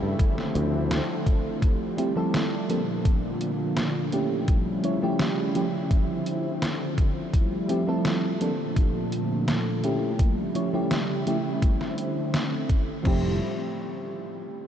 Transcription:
Already playing: C#3 F3 G3 A3 E4
0.03 G2
0.19 D3 F3 C4, kick, closed hi-hat
0.38 snare
0.55 D2, closed hi-hat
0.91 snare, closed hi-hat
1.26 kick, closed hi-hat
1.62 G3, kick, closed hi-hat
1.97 F3 A3 C4 E4 G4, closed hi-hat
2.16 F3 A3 C4 E4 A4
2.34 snare, closed hi-hat
2.69 A#2 D3 F3 A#3 C4 D4 A4, closed hi-hat
3.05 kick, closed hi-hat
3.41 closed hi-hat
3.77 snare, closed hi-hat
4.12 F3 A3 C#4 E4 G4, closed hi-hat
4.48 C#3 F3 G3 E4, kick, closed hi-hat
4.83 F3 A3 C#4 E4 C#5, closed hi-hat
5.02 F3 A3 C#4 E4 G4
5.19 snare, closed hi-hat
5.55 F3 A3 C#4 E4 G4, closed hi-hat
5.91 D3 C4, kick, closed hi-hat
6.26 closed hi-hat
6.62 snare, closed hi-hat
6.98 kick, closed hi-hat
7.33 G3 A3 E4, kick, closed hi-hat
7.69 F3 A3 C4 E4 G4, closed hi-hat
7.87 F3 A3 C4 E4 A4
8.05 snare, closed hi-hat
8.41 A#2 D3 F3 A#3 C4 D4 A4, closed hi-hat
8.76 kick, closed hi-hat
9.12 closed hi-hat
9.48 snare, closed hi-hat
9.83 F3 A3 C#4 E4 G4, closed hi-hat
10.19 C#3 G3 E4, kick, closed hi-hat
10.55 F3 A3 C#4 E4 C#5, closed hi-hat
10.73 F3 A3 C#4 E4 G4
10.91 snare, closed hi-hat
11.26 F3 A3 C#4 E4 G4, closed hi-hat
11.62 D3 C4, kick, closed hi-hat
11.81 snare
11.98 closed hi-hat
12.34 snare, closed hi-hat
12.69 kick, closed hi-hat
13.03 F1 A2 F3 G3 A3 C4 E4, kick, crash
13.07 G4

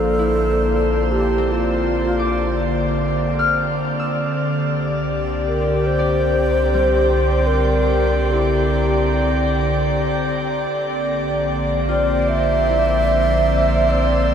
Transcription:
Already playing: A#1 D3 F3 A#3 C4 D4 F4 A4 C5 D5 G5
0.19 E4
1.12 G4
1.38 C4
1.51 F4
2.19 D6
3.39 F6
4.00 E6
4.31 C2 C4
4.45 G4
5.01 G5
5.48 A#4
5.86 C5
5.99 D5
6.74 G3
7.47 A#4
8.32 E4 G4
10.71 A#1 A#3
11.19 C5
11.89 F4 D5
12.29 E5
12.68 E4
12.81 E5
13.88 C4 D5
14.02 G5

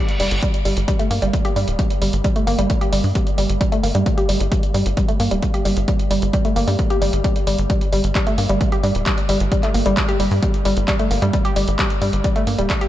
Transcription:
Already playing: reverse cymbal
0.09 closed hi-hat
0.20 F1 G3, open hi-hat
0.31 G1, closed hi-hat
0.42 G3, kick, closed hi-hat
0.54 closed hi-hat
0.65 G1 G3, open hi-hat
0.77 G1, closed hi-hat
0.88 G3, kick, closed hi-hat
0.99 A3, closed hi-hat
1.11 G2 A#3, open hi-hat
1.22 G1 G3, closed hi-hat
1.33 G3, kick, closed hi-hat
1.45 G4, closed hi-hat
1.56 G2 G3, open hi-hat
1.68 D1, closed hi-hat
1.79 G3, kick, closed hi-hat
1.90 closed hi-hat
2.02 G1 G3, open hi-hat
2.13 G1, closed hi-hat
2.24 G3, kick, closed hi-hat
2.36 A3, closed hi-hat
2.47 G1 A#3, open hi-hat
2.58 G1 G3, closed hi-hat
2.70 G3, kick, closed hi-hat
2.81 G4, closed hi-hat
2.92 G1 G3, open hi-hat
3.04 G2, open hi-hat
3.15 G3, kick, closed hi-hat
3.27 closed hi-hat
3.38 G1 G3, open hi-hat
3.49 G1, closed hi-hat
3.61 G3, kick, closed hi-hat
3.72 A3, closed hi-hat
3.83 G1 A#3, open hi-hat
3.95 G2 G3, closed hi-hat
4.06 G3, kick, closed hi-hat
4.18 G4, closed hi-hat
4.29 G1 G3, open hi-hat
4.40 G1, closed hi-hat
4.52 G3, kick, closed hi-hat
4.63 closed hi-hat
4.74 G2 G3, open hi-hat
4.86 G1, closed hi-hat
4.97 G3, kick, closed hi-hat
5.08 A3, closed hi-hat
5.20 G2 A#3, open hi-hat
5.31 D1 G3, closed hi-hat
5.42 G3, kick, closed hi-hat
5.54 G4, closed hi-hat
5.65 G1 G3, open hi-hat
5.77 G1, closed hi-hat
5.88 G3, kick, closed hi-hat
5.99 closed hi-hat
6.11 G1 G3, open hi-hat
6.22 G1, closed hi-hat
6.33 G3, kick, closed hi-hat
6.45 A3, closed hi-hat
6.56 G1 A#3, open hi-hat
6.68 G2 G3, open hi-hat
6.79 G3, kick, closed hi-hat
6.90 G4, closed hi-hat
7.02 G1 G3, open hi-hat
7.13 G1, closed hi-hat
7.24 G3, kick, closed hi-hat
7.36 closed hi-hat
7.47 G1 G3, open hi-hat
7.58 G1, closed hi-hat
7.70 G3, kick, closed hi-hat
7.81 closed hi-hat
7.92 G1 G3, open hi-hat
8.04 G1, closed hi-hat
8.15 G3, kick, clap, closed hi-hat
8.27 A3, closed hi-hat
8.38 G2 A#3, open hi-hat
8.49 G1 G3, closed hi-hat
8.61 G3, kick, closed hi-hat
8.72 G4, closed hi-hat
8.83 G2 G3, open hi-hat
8.95 D1, closed hi-hat
9.06 G3, kick, clap, closed hi-hat
9.18 closed hi-hat
9.29 G1 G3, open hi-hat
9.40 G1, closed hi-hat
9.52 G3, kick, closed hi-hat
9.63 A3, clap, closed hi-hat
9.74 G1 A#3, open hi-hat
9.86 G1 G3, closed hi-hat
9.97 G3, kick, clap, closed hi-hat
10.09 G4, closed hi-hat
10.20 G1 G3, open hi-hat
10.31 G2, open hi-hat
10.43 G3, kick, closed hi-hat
10.54 closed hi-hat
10.65 G1 G3, open hi-hat
10.77 G1, closed hi-hat
10.88 G3, kick, clap, closed hi-hat
10.99 A3, closed hi-hat
11.11 G1 A#3, open hi-hat
11.22 G2 G3, closed hi-hat
11.33 G3, kick, closed hi-hat
11.45 G4, closed hi-hat
11.56 G1 G3, open hi-hat
11.68 G1, closed hi-hat
11.79 G3, kick, clap, closed hi-hat
11.90 closed hi-hat
12.02 G2 G3, open hi-hat
12.13 G1, closed hi-hat
12.24 G3, kick, closed hi-hat
12.36 A3, closed hi-hat
12.47 G2 A#3, open hi-hat
12.58 D1 G3, closed hi-hat
12.70 G3, kick, clap, closed hi-hat
12.81 G4, closed hi-hat

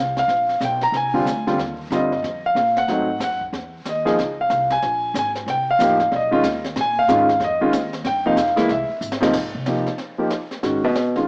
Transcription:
Already playing: C2 F5
0.17 F5, snare
0.28 A#1, brush sweep, snare
0.49 snare
0.61 B1, snare, hi-hat pedal
0.65 G5
0.81 A#5, snare
0.92 C2, brush sweep, snare
0.97 G#5
1.14 D3 G3 C4 F4
1.25 D2, snare, hi-hat pedal
1.47 D3 G3 C4 F4, snare
1.58 D#2, brush sweep, snare
1.90 G2 D3 G3 C4 F4 D#5, snare, hi-hat pedal
2.12 snare
2.22 F2, brush sweep, snare
2.46 F5
2.55 A#2, snare, hi-hat pedal
2.76 F#5, snare
2.88 G#2 F#3 A3 C4 D#4, brush sweep, snare
3.20 F#2, snare, hi-hat pedal
3.24 F#5
3.41 kick
3.52 E2, brush sweep, snare
3.85 D#2 D#5, snare, hi-hat pedal
4.05 F3 A#3 D#4 G#4, snare
4.17 C#2, brush sweep, snare
4.41 F5
4.50 C2, snare, hi-hat pedal
4.70 G#5, snare
4.82 A#1, brush sweep, snare
5.14 G#1, snare, hi-hat pedal
5.19 G#5
5.35 snare
5.46 C2 G5, brush sweep, snare
5.71 F5
5.79 A1 F3 A#3 D#4 G4, snare, hi-hat pedal
6.00 snare
6.12 B1 D5, brush sweep, snare
6.16 D#5
6.31 D#3 G#3 C#4 F4
6.43 D#2, snare, hi-hat pedal
6.64 snare
6.76 A#2, brush sweep, snare
6.81 G#5
6.99 F5
7.08 G#2 D#3 G#3 C#4 F4, snare, hi-hat pedal
7.29 snare
7.40 F2, brush sweep, snare
7.44 D#5
7.61 D#3 G#3 C#4 F4
7.72 D#2, snare, hi-hat pedal
7.93 snare
8.04 G2 G5, brush sweep, snare
8.26 C3 F3 A#3 D#4 F5
8.36 F2, snare, hi-hat pedal
8.48 snare
8.56 E3 G#3 A#3 E4, snare
8.68 C2 E5, brush sweep, snare
8.89 muted upright bass stroke
9.01 G#1, hi-hat pedal
9.12 snare
9.20 C3 F3 A#3 D#4, snare
9.33 G#2, brush sweep, kick, snare, crash
9.55 C3
9.66 F3 A#3 D#4 G4, snare
9.86 snare
9.98 brush sweep, snare
10.18 F3 A#3 D#4 G4
10.30 snare
10.51 snare
10.63 G#2 D#3 G#3 C#4 F#4, brush sweep, snare
10.84 B2
10.95 snare
11.15 D#3 G#3 C#4 F4, snare

